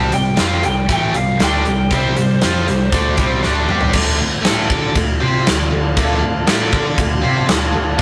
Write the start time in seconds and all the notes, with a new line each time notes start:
Already playing: C2 C3 G3 C4 A5
0.11 C2 C3 G3 G5, closed hi-hat
0.36 F2 F3 C4 F4, snare, closed hi-hat
0.41 F5
0.63 C2 C3 G3 G5, closed hi-hat
0.89 A1 A2 E3 A3, kick, closed hi-hat
0.93 G5
1.14 C2 C3 G3 F5, closed hi-hat
1.39 D2 D3 A3 D4, snare, closed hi-hat
1.44 G5
1.64 C2 C3 G3, closed hi-hat
1.90 C2 C3 G3 C4, kick, closed hi-hat
1.95 C5
2.16 C2 C3 G3, closed hi-hat
2.41 F2 F3 C4 F4, snare, closed hi-hat
2.68 C2 C3 G3, snare, closed hi-hat
2.92 D2 D3 A3 D4, kick, closed hi-hat
3.16 C2 C3 G3 C4, kick, closed hi-hat
3.41 D2 D3 A3 D4, snare
3.67 G2 G3 D4 G4, mid tom
3.81 floor tom
3.93 D2 D3 A3 D4 F4 D5 A5, kick, crash
4.17 D2 D3 A3
4.41 A2 A3 E4 A4, snare, crash
4.69 D3 D4 A4 D5, kick
4.95 D2 D3 A3, kick, crash
5.20 C3 C4 G4 C5
5.47 D2 D3 A3, snare, crash
5.71 D2 D3 A3
5.96 D2 D3 A3 D4, kick, crash
6.21 D2 D3 A3
6.47 A2 A3 E4 A4, snare, crash
6.71 D3 D4 A4 D5, kick
6.97 D2 D3 A3, kick, crash
7.22 C3 C4 G4 C5
7.47 D2 D3 A3, snare, crash
7.72 D2 D3 A3
7.98 D3 A3